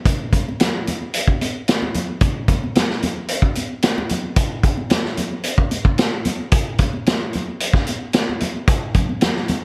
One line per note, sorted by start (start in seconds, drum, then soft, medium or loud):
0.05 kick loud
0.05 closed hi-hat loud
0.33 kick medium
0.33 closed hi-hat medium
0.33 low conga medium
0.49 high conga medium
0.60 snare loud
0.60 closed hi-hat loud
0.60 low conga medium
0.87 closed hi-hat medium
0.87 high conga medium
0.87 low conga medium
1.14 closed hi-hat loud
1.28 kick medium
1.41 closed hi-hat medium
1.41 high conga medium
1.68 snare loud
1.68 closed hi-hat medium
1.82 high conga medium
1.94 closed hi-hat medium
1.94 high conga medium
1.94 low conga medium
2.21 kick loud
2.21 closed hi-hat medium
2.48 kick medium
2.48 closed hi-hat medium
2.48 low conga medium
2.64 high conga medium
2.75 snare loud
2.75 closed hi-hat medium
2.75 low conga medium
2.90 snare soft
3.02 closed hi-hat medium
3.02 high conga medium
3.02 low conga medium
3.28 closed hi-hat loud
3.42 kick medium
3.55 closed hi-hat medium
3.55 high conga medium
3.82 snare loud
3.82 closed hi-hat medium
3.98 high conga medium
4.09 closed hi-hat medium
4.09 high conga medium
4.09 low conga medium
4.36 kick loud
4.36 closed hi-hat loud
4.63 kick medium
4.63 closed hi-hat medium
4.77 high conga medium
4.90 snare loud
4.90 closed hi-hat medium
4.90 low conga medium
5.05 snare soft
5.17 closed hi-hat medium
5.17 high conga medium
5.17 low conga medium
5.43 closed hi-hat medium
5.58 kick medium
5.71 closed hi-hat medium
5.71 high conga medium
5.85 kick medium
5.98 snare loud
5.98 closed hi-hat medium
6.25 closed hi-hat medium
6.25 high conga medium
6.25 low conga medium
6.52 kick loud
6.52 closed hi-hat loud
6.78 kick medium
6.78 closed hi-hat medium
6.78 low conga medium
6.93 high conga medium
7.06 snare loud
7.06 closed hi-hat medium
7.06 low conga medium
7.33 closed hi-hat medium
7.33 high conga medium
7.33 low conga medium
7.60 closed hi-hat medium
7.73 kick medium
7.73 snare soft
7.87 closed hi-hat medium
7.87 high conga medium
8.13 snare loud
8.13 closed hi-hat medium
8.29 high conga medium
8.40 closed hi-hat medium
8.40 high conga medium
8.40 low conga medium
8.67 kick loud
8.67 closed hi-hat medium
8.94 kick medium
8.94 closed hi-hat medium
8.94 low conga medium
9.09 high conga medium
9.21 snare loud
9.21 closed hi-hat loud
9.21 low conga medium
9.36 snare soft
9.48 closed hi-hat medium
9.48 high conga medium
9.48 low conga medium